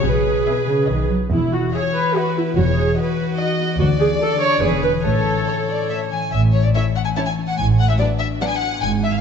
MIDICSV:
0, 0, Header, 1, 7, 480
1, 0, Start_track
1, 0, Key_signature, 4, "major"
1, 0, Tempo, 424929
1, 29, Time_signature, 3, 2, 24, 8
1, 1950, Tempo, 412655
1, 4349, Key_signature, 3, "major"
1, 5310, Tempo, 426439
1, 7710, Tempo, 414079
1, 10564, End_track
2, 0, Start_track
2, 0, Title_t, "Violin section"
2, 0, Program_c, 0, 48
2, 511, Note_on_c, 0, 76, 39
2, 867, Note_off_c, 0, 76, 0
2, 991, Note_on_c, 0, 75, 39
2, 1349, Note_off_c, 0, 75, 0
2, 1954, Note_on_c, 0, 76, 48
2, 2312, Note_off_c, 0, 76, 0
2, 2431, Note_on_c, 0, 76, 44
2, 2789, Note_off_c, 0, 76, 0
2, 3382, Note_on_c, 0, 75, 45
2, 3745, Note_off_c, 0, 75, 0
2, 3886, Note_on_c, 0, 75, 51
2, 4235, Note_off_c, 0, 75, 0
2, 4831, Note_on_c, 0, 74, 46
2, 5188, Note_off_c, 0, 74, 0
2, 5310, Note_on_c, 0, 74, 50
2, 5664, Note_off_c, 0, 74, 0
2, 6281, Note_on_c, 0, 73, 44
2, 6371, Note_off_c, 0, 73, 0
2, 6517, Note_on_c, 0, 74, 42
2, 6751, Note_off_c, 0, 74, 0
2, 6763, Note_on_c, 0, 76, 42
2, 6853, Note_off_c, 0, 76, 0
2, 6997, Note_on_c, 0, 80, 41
2, 7230, Note_off_c, 0, 80, 0
2, 7230, Note_on_c, 0, 76, 51
2, 7320, Note_off_c, 0, 76, 0
2, 7465, Note_on_c, 0, 73, 48
2, 7584, Note_on_c, 0, 74, 44
2, 7585, Note_off_c, 0, 73, 0
2, 7633, Note_off_c, 0, 74, 0
2, 7707, Note_on_c, 0, 76, 53
2, 7800, Note_off_c, 0, 76, 0
2, 7960, Note_on_c, 0, 78, 51
2, 8007, Note_off_c, 0, 78, 0
2, 8064, Note_on_c, 0, 80, 50
2, 8114, Note_off_c, 0, 80, 0
2, 8193, Note_on_c, 0, 81, 54
2, 8242, Note_off_c, 0, 81, 0
2, 8311, Note_on_c, 0, 80, 44
2, 8404, Note_off_c, 0, 80, 0
2, 8555, Note_on_c, 0, 78, 44
2, 8667, Note_on_c, 0, 80, 56
2, 8674, Note_off_c, 0, 78, 0
2, 8760, Note_off_c, 0, 80, 0
2, 8912, Note_on_c, 0, 78, 53
2, 9031, Note_on_c, 0, 76, 48
2, 9032, Note_off_c, 0, 78, 0
2, 9081, Note_off_c, 0, 76, 0
2, 9134, Note_on_c, 0, 74, 52
2, 9227, Note_off_c, 0, 74, 0
2, 9382, Note_on_c, 0, 76, 56
2, 9475, Note_off_c, 0, 76, 0
2, 9636, Note_on_c, 0, 78, 57
2, 9667, Note_off_c, 0, 78, 0
2, 9709, Note_on_c, 0, 80, 48
2, 9792, Note_off_c, 0, 80, 0
2, 9806, Note_on_c, 0, 78, 59
2, 10109, Note_on_c, 0, 80, 59
2, 10116, Note_off_c, 0, 78, 0
2, 10202, Note_off_c, 0, 80, 0
2, 10360, Note_on_c, 0, 76, 57
2, 10472, Note_off_c, 0, 76, 0
2, 10482, Note_on_c, 0, 77, 47
2, 10564, Note_off_c, 0, 77, 0
2, 10564, End_track
3, 0, Start_track
3, 0, Title_t, "Violin section"
3, 0, Program_c, 1, 48
3, 25, Note_on_c, 1, 71, 43
3, 1228, Note_off_c, 1, 71, 0
3, 1960, Note_on_c, 1, 73, 51
3, 2404, Note_off_c, 1, 73, 0
3, 2448, Note_on_c, 1, 71, 39
3, 2920, Note_off_c, 1, 71, 0
3, 2924, Note_on_c, 1, 73, 45
3, 3388, Note_off_c, 1, 73, 0
3, 3403, Note_on_c, 1, 71, 48
3, 3870, Note_off_c, 1, 71, 0
3, 3870, Note_on_c, 1, 75, 49
3, 4338, Note_off_c, 1, 75, 0
3, 4374, Note_on_c, 1, 74, 61
3, 5304, Note_off_c, 1, 74, 0
3, 5315, Note_on_c, 1, 71, 49
3, 5790, Note_off_c, 1, 71, 0
3, 5794, Note_on_c, 1, 73, 41
3, 6973, Note_off_c, 1, 73, 0
3, 7710, Note_on_c, 1, 73, 33
3, 7713, Note_on_c, 1, 64, 35
3, 7803, Note_off_c, 1, 73, 0
3, 7806, Note_off_c, 1, 64, 0
3, 8197, Note_on_c, 1, 73, 35
3, 8198, Note_on_c, 1, 64, 34
3, 8290, Note_off_c, 1, 73, 0
3, 8291, Note_off_c, 1, 64, 0
3, 9157, Note_on_c, 1, 74, 37
3, 9163, Note_on_c, 1, 62, 33
3, 9250, Note_off_c, 1, 74, 0
3, 9256, Note_off_c, 1, 62, 0
3, 9642, Note_on_c, 1, 74, 34
3, 9643, Note_on_c, 1, 62, 34
3, 9735, Note_off_c, 1, 74, 0
3, 9736, Note_off_c, 1, 62, 0
3, 10564, End_track
4, 0, Start_track
4, 0, Title_t, "Viola section"
4, 0, Program_c, 2, 48
4, 47, Note_on_c, 2, 68, 57
4, 1215, Note_off_c, 2, 68, 0
4, 1482, Note_on_c, 2, 64, 61
4, 1700, Note_off_c, 2, 64, 0
4, 1724, Note_on_c, 2, 66, 54
4, 1956, Note_off_c, 2, 66, 0
4, 1957, Note_on_c, 2, 68, 57
4, 2050, Note_off_c, 2, 68, 0
4, 2197, Note_on_c, 2, 71, 58
4, 2430, Note_off_c, 2, 71, 0
4, 2443, Note_on_c, 2, 66, 66
4, 2678, Note_off_c, 2, 66, 0
4, 2679, Note_on_c, 2, 64, 51
4, 2916, Note_off_c, 2, 64, 0
4, 2921, Note_on_c, 2, 66, 54
4, 2967, Note_off_c, 2, 66, 0
4, 3047, Note_on_c, 2, 68, 55
4, 3392, Note_off_c, 2, 68, 0
4, 3403, Note_on_c, 2, 66, 57
4, 4336, Note_off_c, 2, 66, 0
4, 4350, Note_on_c, 2, 66, 67
4, 4443, Note_off_c, 2, 66, 0
4, 4592, Note_on_c, 2, 68, 61
4, 4685, Note_off_c, 2, 68, 0
4, 4838, Note_on_c, 2, 69, 68
4, 5066, Note_on_c, 2, 73, 64
4, 5069, Note_off_c, 2, 69, 0
4, 5304, Note_off_c, 2, 73, 0
4, 5315, Note_on_c, 2, 68, 66
4, 5545, Note_off_c, 2, 68, 0
4, 5547, Note_on_c, 2, 71, 56
4, 5637, Note_off_c, 2, 71, 0
4, 5790, Note_on_c, 2, 69, 55
4, 6736, Note_off_c, 2, 69, 0
4, 7709, Note_on_c, 2, 57, 32
4, 7709, Note_on_c, 2, 61, 31
4, 7802, Note_off_c, 2, 57, 0
4, 7802, Note_off_c, 2, 61, 0
4, 8190, Note_on_c, 2, 61, 38
4, 8191, Note_on_c, 2, 57, 36
4, 8283, Note_off_c, 2, 61, 0
4, 8284, Note_off_c, 2, 57, 0
4, 9153, Note_on_c, 2, 54, 35
4, 9155, Note_on_c, 2, 59, 37
4, 9246, Note_off_c, 2, 54, 0
4, 9247, Note_off_c, 2, 59, 0
4, 9631, Note_on_c, 2, 59, 40
4, 9633, Note_on_c, 2, 54, 42
4, 9724, Note_off_c, 2, 59, 0
4, 9725, Note_off_c, 2, 54, 0
4, 10564, End_track
5, 0, Start_track
5, 0, Title_t, "Harp"
5, 0, Program_c, 3, 46
5, 32, Note_on_c, 3, 47, 43
5, 269, Note_on_c, 3, 59, 32
5, 514, Note_on_c, 3, 64, 33
5, 755, Note_on_c, 3, 71, 29
5, 975, Note_off_c, 3, 47, 0
5, 989, Note_on_c, 3, 47, 36
5, 1011, Note_off_c, 3, 64, 0
5, 1225, Note_off_c, 3, 71, 0
5, 1230, Note_on_c, 3, 63, 27
5, 1242, Note_on_c, 3, 71, 29
5, 1477, Note_on_c, 3, 52, 44
5, 1490, Note_off_c, 3, 47, 0
5, 1492, Note_off_c, 3, 63, 0
5, 1723, Note_on_c, 3, 64, 34
5, 1958, Note_on_c, 3, 68, 37
5, 2187, Note_off_c, 3, 71, 0
5, 2425, Note_off_c, 3, 64, 0
5, 2439, Note_on_c, 3, 64, 36
5, 2664, Note_off_c, 3, 59, 0
5, 2678, Note_on_c, 3, 59, 32
5, 2898, Note_off_c, 3, 52, 0
5, 2912, Note_on_c, 3, 52, 45
5, 2935, Note_off_c, 3, 64, 0
5, 2936, Note_off_c, 3, 68, 0
5, 3154, Note_on_c, 3, 63, 35
5, 3394, Note_on_c, 3, 66, 34
5, 3632, Note_on_c, 3, 71, 42
5, 3863, Note_off_c, 3, 63, 0
5, 3877, Note_on_c, 3, 63, 38
5, 4102, Note_off_c, 3, 59, 0
5, 4116, Note_on_c, 3, 59, 37
5, 4348, Note_on_c, 3, 50, 52
5, 4368, Note_off_c, 3, 52, 0
5, 4368, Note_off_c, 3, 71, 0
5, 4370, Note_off_c, 3, 59, 0
5, 4370, Note_off_c, 3, 63, 0
5, 4585, Note_on_c, 3, 61, 39
5, 4823, Note_on_c, 3, 62, 45
5, 5054, Note_off_c, 3, 66, 0
5, 5068, Note_on_c, 3, 66, 43
5, 5302, Note_on_c, 3, 52, 42
5, 5328, Note_off_c, 3, 61, 0
5, 5329, Note_off_c, 3, 50, 0
5, 5329, Note_off_c, 3, 66, 0
5, 5529, Note_off_c, 3, 62, 0
5, 5543, Note_on_c, 3, 62, 29
5, 5550, Note_on_c, 3, 64, 31
5, 5787, Note_on_c, 3, 45, 43
5, 5803, Note_off_c, 3, 52, 0
5, 5805, Note_off_c, 3, 62, 0
5, 6025, Note_on_c, 3, 57, 32
5, 6269, Note_on_c, 3, 61, 32
5, 6496, Note_off_c, 3, 64, 0
5, 6510, Note_on_c, 3, 64, 30
5, 6739, Note_off_c, 3, 57, 0
5, 6753, Note_on_c, 3, 57, 29
5, 6993, Note_on_c, 3, 52, 26
5, 7214, Note_off_c, 3, 45, 0
5, 7228, Note_on_c, 3, 45, 39
5, 7251, Note_off_c, 3, 52, 0
5, 7466, Note_on_c, 3, 52, 32
5, 7694, Note_off_c, 3, 57, 0
5, 7708, Note_on_c, 3, 57, 33
5, 7940, Note_off_c, 3, 61, 0
5, 7954, Note_on_c, 3, 61, 31
5, 8180, Note_off_c, 3, 64, 0
5, 8194, Note_on_c, 3, 64, 33
5, 8427, Note_off_c, 3, 61, 0
5, 8441, Note_on_c, 3, 61, 32
5, 8662, Note_off_c, 3, 45, 0
5, 8676, Note_on_c, 3, 45, 37
5, 8694, Note_off_c, 3, 52, 0
5, 8696, Note_off_c, 3, 64, 0
5, 8699, Note_off_c, 3, 61, 0
5, 8906, Note_off_c, 3, 57, 0
5, 8920, Note_on_c, 3, 57, 33
5, 9158, Note_on_c, 3, 62, 31
5, 9397, Note_on_c, 3, 66, 34
5, 9637, Note_on_c, 3, 71, 37
5, 9870, Note_off_c, 3, 66, 0
5, 9884, Note_on_c, 3, 66, 34
5, 10109, Note_on_c, 3, 44, 43
5, 10129, Note_off_c, 3, 45, 0
5, 10131, Note_off_c, 3, 57, 0
5, 10135, Note_off_c, 3, 66, 0
5, 10354, Note_on_c, 3, 56, 34
5, 10564, Note_off_c, 3, 44, 0
5, 10564, Note_off_c, 3, 56, 0
5, 10564, Note_off_c, 3, 62, 0
5, 10564, Note_off_c, 3, 71, 0
5, 10564, End_track
6, 0, Start_track
6, 0, Title_t, "Cello section"
6, 0, Program_c, 4, 48
6, 43, Note_on_c, 4, 47, 54
6, 415, Note_off_c, 4, 47, 0
6, 524, Note_on_c, 4, 47, 41
6, 614, Note_off_c, 4, 47, 0
6, 752, Note_on_c, 4, 49, 42
6, 985, Note_off_c, 4, 49, 0
6, 993, Note_on_c, 4, 51, 44
6, 1227, Note_on_c, 4, 54, 40
6, 1232, Note_off_c, 4, 51, 0
6, 1317, Note_off_c, 4, 54, 0
6, 1467, Note_on_c, 4, 40, 55
6, 1847, Note_off_c, 4, 40, 0
6, 2929, Note_on_c, 4, 40, 54
6, 3300, Note_off_c, 4, 40, 0
6, 4358, Note_on_c, 4, 38, 64
6, 4732, Note_off_c, 4, 38, 0
6, 5319, Note_on_c, 4, 40, 54
6, 5691, Note_off_c, 4, 40, 0
6, 5797, Note_on_c, 4, 45, 54
6, 6174, Note_off_c, 4, 45, 0
6, 7250, Note_on_c, 4, 45, 44
6, 7639, Note_off_c, 4, 45, 0
6, 8670, Note_on_c, 4, 45, 46
6, 9074, Note_off_c, 4, 45, 0
6, 10111, Note_on_c, 4, 44, 51
6, 10509, Note_off_c, 4, 44, 0
6, 10564, End_track
7, 0, Start_track
7, 0, Title_t, "Double bass section"
7, 0, Program_c, 5, 48
7, 26, Note_on_c, 5, 35, 43
7, 406, Note_off_c, 5, 35, 0
7, 996, Note_on_c, 5, 35, 41
7, 1374, Note_off_c, 5, 35, 0
7, 1477, Note_on_c, 5, 28, 47
7, 1853, Note_off_c, 5, 28, 0
7, 2921, Note_on_c, 5, 28, 54
7, 3296, Note_off_c, 5, 28, 0
7, 4347, Note_on_c, 5, 38, 54
7, 4726, Note_off_c, 5, 38, 0
7, 5299, Note_on_c, 5, 28, 47
7, 5681, Note_off_c, 5, 28, 0
7, 5785, Note_on_c, 5, 33, 47
7, 6168, Note_off_c, 5, 33, 0
7, 7228, Note_on_c, 5, 33, 41
7, 7627, Note_off_c, 5, 33, 0
7, 8669, Note_on_c, 5, 33, 38
7, 9073, Note_off_c, 5, 33, 0
7, 10121, Note_on_c, 5, 32, 48
7, 10514, Note_off_c, 5, 32, 0
7, 10564, End_track
0, 0, End_of_file